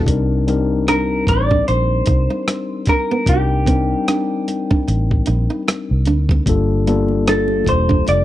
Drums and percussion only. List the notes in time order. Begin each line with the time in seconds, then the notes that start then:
0.06 kick, closed hi-hat
0.48 closed hi-hat
0.88 cross-stick, closed hi-hat
1.27 kick, closed hi-hat
1.51 kick
1.68 closed hi-hat
2.06 kick, closed hi-hat
2.48 cross-stick, closed hi-hat
2.86 kick, closed hi-hat
3.26 kick, closed hi-hat
3.66 kick, closed hi-hat
4.08 cross-stick, closed hi-hat
4.48 closed hi-hat
4.71 kick
4.88 closed hi-hat
5.11 kick
5.26 closed hi-hat
5.68 cross-stick, closed hi-hat
6.05 closed hi-hat
6.29 kick
6.46 kick, closed hi-hat
6.87 closed hi-hat
7.08 high conga
7.26 cross-stick, closed hi-hat, muted conga
7.48 muted conga, high conga
7.65 kick, closed hi-hat, high conga, low conga
7.91 kick
8.05 closed hi-hat, high conga